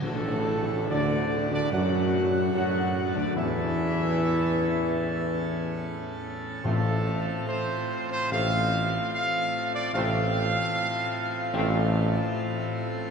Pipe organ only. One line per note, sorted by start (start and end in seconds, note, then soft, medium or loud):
0.04 3.33 A2 medium
0.04 3.33 A3 medium
0.04 3.33 D4 medium
0.04 3.33 F#4 medium
3.37 6.60 A2 medium
3.37 6.60 A3 medium
3.37 6.64 C#4 medium
3.37 6.64 A4 medium
6.64 9.89 A2 medium
6.64 9.89 A3 medium
6.64 9.91 C4 medium
6.64 9.91 F4 medium
9.93 13.11 A2 loud
9.93 13.11 A3 medium
9.93 13.11 C4 medium
9.93 13.11 F4 medium